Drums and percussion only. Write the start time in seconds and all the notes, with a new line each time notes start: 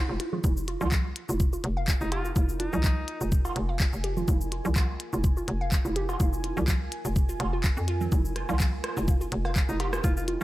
0.20 closed hi-hat, low bongo
0.33 low conga
0.44 kick, low bongo, shaker
0.57 shaker
0.68 closed hi-hat
0.81 cowbell, low conga, shaker
0.92 kick, clap, shaker
1.16 closed hi-hat
1.29 low bongo, shaker
1.40 kick, shaker
1.53 shaker
1.64 closed hi-hat
1.88 kick, clap, shaker
2.01 low bongo, shaker
2.12 closed hi-hat, cowbell
2.25 shaker
2.36 kick, low bongo, shaker
2.49 shaker
2.60 closed hi-hat, low bongo
2.73 low conga, shaker
2.84 kick, clap, shaker
3.08 closed hi-hat
3.21 shaker
3.32 kick, shaker
3.45 cowbell, shaker
3.56 closed hi-hat
3.80 kick, clap, shaker
3.93 shaker
4.04 closed hi-hat
4.17 low conga, shaker
4.28 kick, low bongo, shaker
4.41 shaker
4.52 closed hi-hat
4.65 low conga, shaker
4.76 kick, clap, cowbell, shaker
5.00 closed hi-hat
5.13 low bongo, shaker
5.24 kick, shaker
5.37 shaker
5.48 closed hi-hat
5.72 kick, clap, shaker
5.85 low bongo, shaker
5.96 closed hi-hat
6.09 cowbell, shaker
6.20 kick, low bongo, shaker
6.33 shaker
6.44 closed hi-hat, low bongo
6.57 low conga, shaker
6.68 kick, clap, shaker
6.92 closed hi-hat
7.05 shaker
7.16 kick, shaker
7.29 shaker
7.40 closed hi-hat, cowbell
7.64 kick, clap, shaker
7.77 shaker
7.88 closed hi-hat
8.01 low conga, shaker
8.12 kick, low bongo, shaker
8.25 shaker
8.36 cross-stick, closed hi-hat
8.49 cowbell, low conga, shaker
8.60 kick, clap, shaker
8.84 cross-stick, closed hi-hat
8.97 low bongo, shaker
9.08 kick, shaker
9.21 shaker
9.32 closed hi-hat
9.45 cross-stick
9.56 kick, clap, shaker
9.69 low bongo, shaker
9.80 closed hi-hat, cowbell
9.93 cross-stick, shaker
10.04 kick, low bongo, shaker
10.17 shaker
10.28 closed hi-hat, low bongo